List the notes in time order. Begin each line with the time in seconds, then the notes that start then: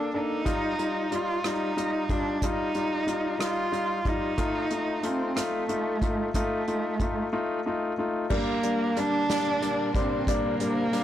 Already playing: D4
0.14 A#3 D4 D#4 A4
0.45 G3 D#4 F4, kick, closed hi-hat
0.79 G3 D#4 F4, closed hi-hat
1.11 G3 D#4 F4, closed hi-hat
1.15 F4
1.44 G3 D#4 F4, cross-stick, closed hi-hat
1.77 G3 D#4 F4, closed hi-hat
2.09 G3 D4 D#4 F4, kick, closed hi-hat
2.42 G3 D#4 F4, kick, closed hi-hat
2.75 G3 D#4 F4, closed hi-hat
3.07 G3 D#4 F4, closed hi-hat
3.39 G3 D#4 F4, cross-stick, closed hi-hat
3.44 F4
3.72 G3 D#4 F4, closed hi-hat
4.05 G3 D#4 F4, kick, closed hi-hat
4.38 A3 D#4 F4, kick, closed hi-hat
4.70 A3 D#4 F4, closed hi-hat
5.03 A3 D#4 F4, closed hi-hat
5.07 C4
5.36 A3 D#4 F4, cross-stick, closed hi-hat
5.40 A3
5.69 A3 D#4 F4, closed hi-hat
6.01 A3 D#4 F4, kick, closed hi-hat
6.34 A3 D#4 F4, kick, closed hi-hat
6.68 A3 D#4 F4, closed hi-hat
7.00 A3 D#4 F4, kick, closed hi-hat
7.33 A3 D#4 F4
7.66 A3 D#4 F4
7.98 A3 D#4 F4
8.30 A#2 D3 G3 A#3 D4, kick, crash
8.63 G3 A#3 D4, closed hi-hat
8.97 G3 A#3 D4, closed hi-hat
9.30 G3 A#3 D4, snare, closed hi-hat
9.62 G3 A#3 D4, closed hi-hat
9.95 G3 A#3 C4 D4, kick, closed hi-hat
10.26 G3 A#3 C4 D4, kick, closed hi-hat
10.60 G3 A#3 D4, closed hi-hat
10.92 G3 A#3 D4, closed hi-hat